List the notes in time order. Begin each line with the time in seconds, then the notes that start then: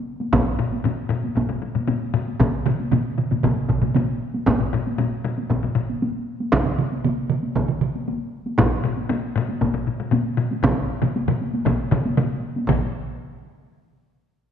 0.20 taiko high
0.33 taiko, taiko low-mid, taiko high
0.59 taiko low-mid
0.72 taiko high
0.84 taiko low-mid, taiko high
1.09 taiko low-mid
1.24 taiko high
1.36 taiko, taiko low-mid, taiko high
1.49 taiko low-mid
1.62 taiko low-mid
1.75 taiko low-mid, taiko high
1.88 taiko low-mid, taiko high
2.14 taiko low-mid
2.28 taiko high
2.40 taiko, taiko low-mid, taiko mid, taiko high
2.66 taiko low-mid, taiko mid
2.80 taiko high
2.92 taiko low-mid, taiko mid, taiko high
3.18 taiko low-mid, taiko mid
3.31 taiko low-mid, taiko mid, taiko high
3.43 taiko, taiko low-mid, taiko mid, taiko high
3.69 taiko, taiko low-mid, taiko mid
3.82 taiko low-mid, taiko mid, taiko high
3.95 taiko low-mid, taiko mid, taiko high
4.34 taiko high
4.46 taiko, taiko low-mid, taiko high
4.60 taiko low-mid
4.73 taiko low-mid
4.87 taiko high
4.99 taiko low-mid, taiko high
5.24 taiko low-mid
5.38 taiko high
5.50 taiko, taiko low-mid, taiko high
5.63 taiko low-mid
5.76 taiko low-mid
5.89 taiko high
6.02 taiko high
6.41 taiko high
6.52 taiko, taiko mid, taiko high
6.66 taiko mid
6.78 taiko mid
6.92 taiko high
7.04 taiko mid, taiko high
7.30 taiko mid
7.43 taiko high
7.55 taiko, taiko mid, taiko high
7.68 taiko mid
7.81 taiko mid
7.95 taiko high
8.08 taiko high
8.46 taiko high
8.58 taiko, taiko low-mid, taiko high
8.84 taiko low-mid
8.97 taiko high
9.09 taiko low-mid, taiko high
9.36 taiko low-mid
9.48 taiko high
9.61 taiko, taiko low-mid, taiko high
9.74 taiko low-mid
9.87 taiko low-mid
10.00 taiko low-mid
10.12 taiko low-mid, taiko high
10.37 taiko low-mid
10.51 taiko high
10.63 taiko, taiko low-mid, taiko mid, taiko high
11.02 taiko low-mid, taiko mid, taiko high
11.16 taiko high
11.28 taiko low-mid, taiko mid
11.41 taiko high
11.54 taiko high
11.66 taiko, taiko low-mid, taiko mid, taiko high
11.91 taiko, taiko low-mid, taiko mid
12.05 taiko high
12.17 taiko low-mid, taiko mid, taiko high
12.56 taiko high
12.68 taiko, taiko low-mid, taiko mid, taiko high